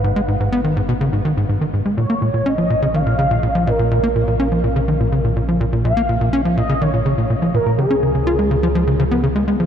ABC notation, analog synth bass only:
X:1
M:4/4
L:1/16
Q:1/4=124
K:A#phr
V:1 name="Analog synth bass" clef=bass
G,, G, G,, G,, B, D, G,, B,, C, G,, D, G,, G,, D, G,, G, | A,, A, A,, A,, C E, A,, C, D, A,, C, A,, A,, E, A,, A,, | A,, A, A,, A,, C E, A,, C, D, A,, C, A,, A,, E, A,, A,, | A,, A, A,, A,, C E, A,, C, D, A,, C, A,, A,, E, A,, A,, |
C, C C, C, E G, C, E, E, C, C, B, C, G, G, E, |]